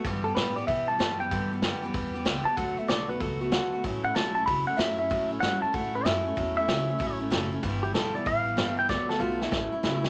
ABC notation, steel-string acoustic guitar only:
X:1
M:4/4
L:1/8
Q:"Swing" 1/4=190
K:Amix
V:1 name="Steel-string acoustic guitar"
[G,,D,E,G,B,G] [E,G,B,G] [G,,D,E,G,B,G] [E,G,B,G] [E,G,B,G] [E,G,B,G] [G,,D,E,G,B,G] [E,G,B,G] | [G,,D,E,G,B,G] [E,G,B,G] [G,,D,E,G,B,G] [E,G,B,G] [E,G,B,G] [E,G,B,G] [G,,D,E,G,B,G] [E,G,B,G] | [D,F,A,B,F] [A,B,F] [D,F,A,B,F] [A,B,F] [F,A,B,F] [A,B,F] [D,F,A,B,F] [A,B,F] | [A,,F,A,CE] [A,CE] [A,,F,A,CE] [A,CE] [F,A,CE] [A,CE] [A,,F,A,CE] [A,CE] |
[A,,F,A,CE] [A,CE] [A,,F,A,CE] [A,CE] [F,A,CE] [A,CE] [A,,F,A,CE] [A,CE] | [A,,F,A,CE] [A,CE] [A,,F,A,CE] [A,CE] [F,A,CE] [A,CE] [A,,F,A,CE] [A,CE] | [G,,D,E,G,B,E] [E,G,B,E] [G,,D,E,G,B,E] [E,G,B,E] [E,G,B,E] [E,G,B,E] [G,,D,E,G,B,E] [E,G,B,E] | [D,F,A,B,F] [A,B,F] [D,F,A,B,F] [A,B,F] [F,A,CE] [A,CE] [A,,F,A,CE] [A,CE] |]